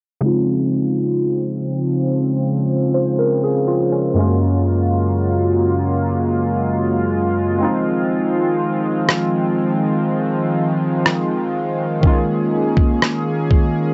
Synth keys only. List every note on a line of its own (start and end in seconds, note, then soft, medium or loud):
0.21 4.11 C#3 medium
0.21 4.12 G#3 medium
0.21 2.65 C4 medium
0.25 2.66 D#4 medium
0.25 2.66 F4 medium
2.94 3.17 C5 medium
3.19 3.42 A#4 medium
3.44 3.66 G#4 medium
3.68 3.91 F4 medium
3.92 4.18 C#4 medium
4.14 7.55 F#2 medium
4.14 7.56 G#3 medium
4.14 4.23 A3 soft
4.19 7.58 C#4 medium
4.19 7.58 F4 medium
4.24 7.60 A#3 medium
7.59 11.49 G#3 medium
7.59 11.50 C4 medium
7.59 11.51 D#4 medium
7.64 11.52 F4 medium
12.01 13.94 D#3 medium
12.01 12.09 F#3 soft
12.01 13.94 A#3 medium
12.05 13.94 G#3 medium
12.05 13.94 C#4 medium
12.05 13.94 F4 medium